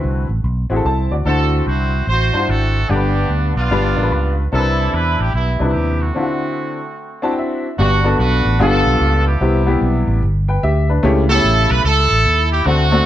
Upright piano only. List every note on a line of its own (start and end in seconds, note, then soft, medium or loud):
0.00 0.25 D3 medium
0.00 0.24 C4 medium
0.00 0.24 E4 medium
0.00 0.25 F#4 medium
0.00 0.25 B4 medium
0.70 1.12 C4 medium
0.70 1.13 E4 medium
0.70 0.85 F#4 medium
0.70 0.75 G#4 medium
0.76 0.88 A4 medium
0.86 1.10 C5 medium
0.86 1.10 A5 medium
1.12 1.25 F#4 soft
1.12 1.50 D5 medium
1.25 1.89 D3 medium
1.25 1.88 D4 medium
1.25 1.88 E4 medium
1.25 1.88 F#4 medium
1.25 1.89 C5 medium
2.33 2.76 D4 medium
2.33 2.76 E4 medium
2.33 2.38 F4 medium
2.33 2.77 C5 medium
2.39 2.79 F#4 medium
2.89 3.53 G2 medium
2.89 3.51 D4 medium
2.89 3.52 G4 medium
2.89 2.96 A4 medium
2.89 3.51 F#5 medium
2.96 3.54 B4 medium
3.71 4.34 G2 medium
3.71 3.92 D4 medium
3.71 3.92 F4 medium
3.71 3.92 G4 medium
3.71 3.93 B4 medium
3.96 4.39 D4 medium
3.96 4.40 F4 medium
3.96 4.40 G4 medium
3.96 4.01 A#4 medium
4.03 4.43 B4 medium
4.52 5.16 C3 medium
4.52 5.14 C4 medium
4.52 5.14 D4 medium
4.52 5.15 E4 medium
4.52 4.60 A#4 medium
4.59 5.18 B4 medium
5.59 6.02 C3 medium
5.59 6.02 D4 medium
5.59 5.64 D#4 soft
5.59 6.03 B4 medium
5.65 6.05 E4 medium
6.15 6.79 D3 medium
6.15 6.77 C4 medium
6.15 6.78 D4 medium
6.15 6.78 E4 medium
6.15 6.23 F4 medium
6.22 6.81 F#4 medium
7.22 7.65 C4 medium
7.22 7.66 D4 medium
7.22 7.66 E4 medium
7.22 7.66 F#4 medium
7.22 7.30 A5 medium
7.31 7.38 G5 medium
7.38 7.76 E5 medium
7.78 8.42 G2 medium
7.78 7.97 B3 medium
7.78 7.97 D4 medium
7.78 7.98 F#4 medium
7.78 7.98 G4 medium
8.04 8.57 B3 medium
8.04 8.57 D4 medium
8.04 8.58 F#4 medium
8.04 8.58 A4 medium
8.59 9.23 G2 medium
8.59 9.29 B3 medium
8.59 9.30 D4 medium
8.59 9.30 F4 medium
8.59 9.30 G4 loud
9.41 10.04 C3 medium
9.41 9.59 B3 medium
9.41 9.60 C4 medium
9.41 9.60 E4 medium
9.41 9.60 G4 medium
9.66 10.19 G3 medium
9.66 10.19 B3 medium
9.66 10.20 E4 medium
9.66 10.20 G4 medium
10.48 10.63 B4 medium
10.48 10.63 G5 medium
10.63 10.88 G4 medium
10.63 10.88 E5 medium
10.90 11.28 D4 medium
10.90 11.28 B4 medium
11.03 11.67 C#3 medium
11.03 11.22 A3 medium
11.03 11.22 C#4 medium
11.03 11.22 E4 medium
11.03 11.22 G4 loud
11.29 11.82 A3 medium
11.29 11.33 B3 medium
11.29 11.82 E4 medium
11.29 11.83 G4 medium
11.34 11.85 C#4 medium
12.65 13.06 D3 medium
12.65 12.84 A3 medium
12.65 12.84 C4 medium
12.65 12.85 D4 medium
12.65 12.85 F#4 medium
12.92 13.06 A3 medium
12.92 13.06 C4 medium
12.92 13.06 D4 medium
12.92 13.06 F#4 medium